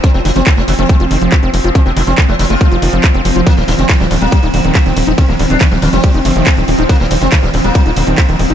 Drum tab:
RD |----------------|----------------|x---x---x---x---|x---x---x---x---|
HH |x-oxx-oxxxoxxxox|x-oxx-oxxxoxxxox|x-oxx-oxxxoxxxox|x-oxx-oxxxoxxxox|
CP |----x-------x---|----x-------x---|----x-------x---|----x-------x---|
BD |o---o---o---o---|o---o---o---o---|o---o---o---o---|o---o---o---o---|

RD |x---x---x---x---|
HH |x-oxx-oxxxoxxxox|
CP |----x-------x---|
BD |o---o---o---o---|